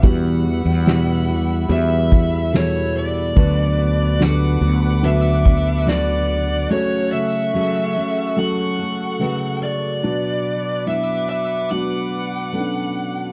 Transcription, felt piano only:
<<
  \new Staff \with { instrumentName = "Felt piano" } { \time 4/4 \key b \minor \tempo 4 = 72 <g b e' fis' g'>4 <g b e' fis' g'>4 <g b e' fis' g'>4 <g b e' fis' a'>4 | <fis b d' fis' b'>4 <fis b d' fis' g' a'>4 <fis b d' fis' b'>4 <fis b d' fis' d''>4 | <fis a cis' fis' a'>4 <fis a cis' fis' a'>4 <fis a cis' fis' a'>4 <cis fis a fis' b'>4 | <fis b d' fis'>4 <fis b d' e'>4 <fis b d' fis'>4 <fis b cis' d' a'>4 | }
  \new Staff \with { instrumentName = "Felt piano" } { \clef bass \time 4/4 \key b \minor e4. r2 r8 | d4. r2 r8 | cis4. r2 r8 | b,4. r2 r8 | }
>>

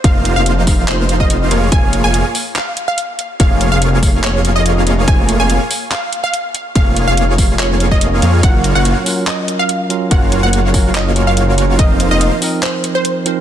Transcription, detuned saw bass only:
\new Staff \with { instrumentName = "Detuned saw bass" } { \clef bass \time 4/4 \key bes \minor \tempo 4 = 143 f,,8. f,,2~ f,,8. f,,8 | f,,8. f,,8 r2 r8. | f,,8. f,,2.~ f,,16 | f,,8. f,,8 r2 r8. |
f,,8. f,,2~ f,,8. f,8 | ges,,8. ges,,8 r2 r8. | ges,,8. ges,,2.~ ges,,16 | f,,8. f,,8 r2 r8. | }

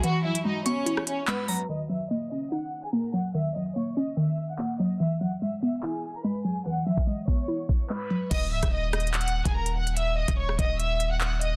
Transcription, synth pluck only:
\new Staff \with { instrumentName = "Synth pluck" } { \clef bass \time 4/4 \key ees \phrygian \tempo 4 = 145 <e fis gis e'>8 fis8 gis8 b8 e'4 gis8 fis8 | ees8 ges8 bes8 des'8 ees'4 bes8 ges8 | ees8 ges8 bes8 des'8 ees4 bes8 ges8 | e8 fis8 gis8 b8 e'4 gis8 fis8 |
e8 fis8 gis8 b8 e'4 gis8 fis8 | r1 | r1 | }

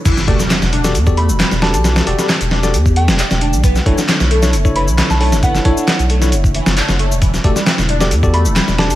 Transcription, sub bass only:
\new Staff \with { instrumentName = "Sub bass" } { \clef bass \time 4/4 \key e \dorian \tempo 4 = 134 r8 e,,16 r8 e,,8. e,8. e,,16 r16 e,,8 b,,16~ | b,,16 r16 e,,16 r8 e,,8. e,8. e,,16 r16 e,,8 b,,16~ | b,,16 r16 b,,16 r8 b,,8. fis,,8. b,,16 r16 b,,8 fis,,16~ | fis,,16 r16 b,,16 r8 b,,8. fis,,8 r16 fis,,16 r16 fis,,8 e,,16~ |
e,,16 r16 e,,16 r8 e,,8. e,8. e,,16 r16 e,,8 b,,16 | }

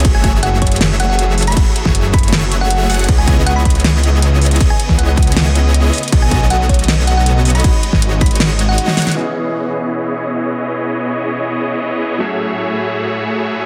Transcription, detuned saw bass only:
\new Staff \with { instrumentName = "Detuned saw bass" } { \clef bass \time 4/4 \key cis \minor \tempo 4 = 158 fis,,8. fis,,2.~ fis,,16 | fis,,16 r8 fis,,2~ fis,,8. fis,,8 | cis,8. cis,2.~ cis,16 | cis,16 r8 cis,2~ cis,8. r8 |
b,,8. b,,2.~ b,,16 | gis,,16 r8 gis,,2~ gis,,16 r4 | r1 | r1 |
r1 | }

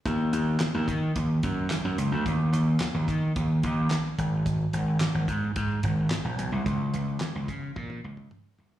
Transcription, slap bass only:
\new Staff \with { instrumentName = "Slap bass" } { \clef bass \time 4/4 \key ees \dorian \tempo 4 = 109 ees,8 ees,8 r16 ees,16 ees8 ees,8 ges,8 r16 ges,16 des,16 d,16 | ees,8 ees,8 r16 ees,16 ees8 ees,8 ees,8 r8 aes,,8~ | aes,,8 aes,,8 r16 aes,,16 aes,8 aes,8 aes,,8 r16 bes,,16 ces,16 c,16 | des,8 des,8 r16 des,16 des8 bes,8 des,8 r8 c,8 | }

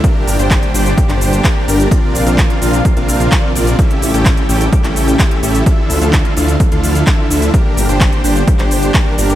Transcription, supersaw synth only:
\new Staff \with { instrumentName = "Supersaw synth" } { \time 4/4 \key g \dorian \tempo 4 = 128 <g' bes'>8. <d' g' c''>8. <d' g' c''>8 r16 <d' g' c''>8. <d' g' bes'>8 <d' g' bes'>8 | <c' d' f' bes' d''>8. <c' d' f' bes' f''>8. <c' d' f' bes' f''>8 r16 <c' d' f' bes' f''>8. <c' d' f' bes'>8 <c' d' f' bes' d''>8 | <cis' e' g' a' e''>8. <cis' e' g' a' g''>8. <cis' e' g' a' g''>8 r16 <cis' e' g' a' g''>8. <e' g' a' e''>8 <cis' e' g' a' e''>8 | d'8. <d' e' f' a' f''>8. <d' e' f' a' f''>8 r16 <d' e' f' a' f''>8. r8 <d' e' f' a' e''>8 |
<d' g'>8. <d' g' c''>8. <d' g' c''>8 r16 <d' g' c''>8. <d' bes'>8 <d' g' bes'>8 | }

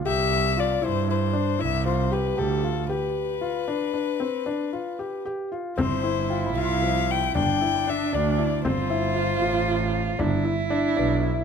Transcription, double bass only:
\new Staff \with { instrumentName = "Double bass" } { \clef bass \time 11/8 \key g \mixolydian \tempo 4 = 116 c,4. g,4. c,4. d,4 | r1 r4. | g,,4. c,4. g,,8 r4 d,4 | g,,4. a,,4. g,,8 r4 b,,4 | }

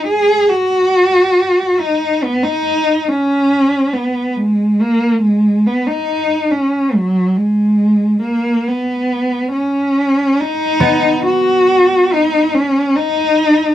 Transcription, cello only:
\new Staff \with { instrumentName = "Cello" } { \time 4/4 \key b \major \tempo 4 = 70 gis'8 fis'4. dis'8 b16 dis'8. cis'8~ | cis'8 b8 gis8 ais8 gis8 b16 dis'8. cis'8 | fis8 gis4 ais8 b4 cis'4 | dis'4 fis'4 dis'8 cis'8 dis'4 | }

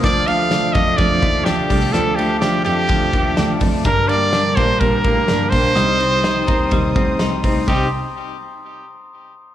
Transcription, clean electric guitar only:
\new Staff \with { instrumentName = "Clean electric guitar" } { \time 4/4 \key c \dorian \tempo 4 = 126 <f d'>8 a8 d'8 a8 f8 a8 d'8 g16 a16 | <f d'>8 a8 d'8 a8 f8 a8 d'8 a8 | <g d'>8 bes8 d'8 bes8 g8 bes8 d'8 bes8 | <g ees'>8 c'8 ees'8 c'8 g8 c'8 ees'8 c'8 |
<g c' ees'>8 r2. r8 | }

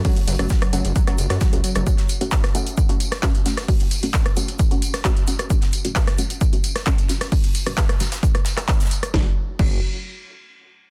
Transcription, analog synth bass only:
\new Staff \with { instrumentName = "Analog synth bass" } { \clef bass \time 4/4 \key fis \minor \tempo 4 = 132 r8 fis,,16 fis,,16 r8 fis,,16 fis,,16 r8 fis,,16 fis,16 r16 cis,16 r16 fis,,16 | r1 | r1 | r1 |
r1 | fis,,16 r8. fis,,8 r2 r8 | }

